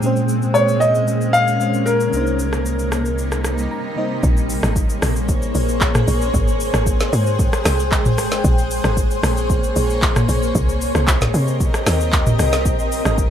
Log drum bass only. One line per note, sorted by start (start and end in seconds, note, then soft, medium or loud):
4.23 4.60 A#1 loud
4.63 4.98 G#1 medium
5.02 5.51 A#1 loud
5.55 6.04 A#1 medium
6.08 6.31 A#1 medium
6.34 6.70 G#1 loud
6.74 7.09 G#1 loud
7.13 7.49 G#2 loud
7.65 8.20 C2 loud
8.18 8.42 G#1 medium
8.44 8.81 A#1 loud
8.84 9.20 G#1 loud
9.23 9.72 A#1 loud
9.76 10.25 A#1 loud
10.29 10.52 A#1 medium
10.55 10.91 C2 loud
10.95 11.30 C2 loud
11.34 11.70 C3 medium
11.87 12.35 D#2 loud
12.39 12.67 C2 loud
12.66 13.02 A#1 loud
13.06 13.30 G#1 medium